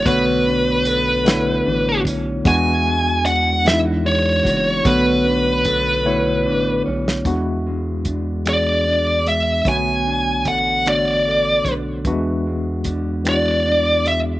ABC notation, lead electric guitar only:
X:1
M:6/8
L:1/8
Q:3/8=50
K:Emix
V:1 name="Lead electric guitar"
B4- B z | g2 f e c2 | B4- B z | z3 d2 e |
g2 f d2 z | z3 d2 e |]